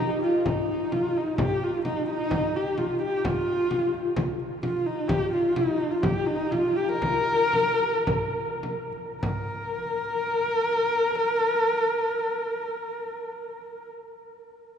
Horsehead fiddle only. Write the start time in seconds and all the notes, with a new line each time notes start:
Already playing: D#4
0.24 F4
0.39 F4
0.46 D#4
0.92 F4
1.17 D#4
1.40 G4
1.64 F4
1.86 D#4
2.10 D#4
2.56 G4
2.79 F4
3.03 G4
3.26 F4
4.63 F4
4.87 D#4
5.09 G4
5.33 F4
5.57 D#4
5.91 F4
6.03 G4
6.27 D#4
6.52 F4
6.77 G4
6.89 A#4
9.21 A#4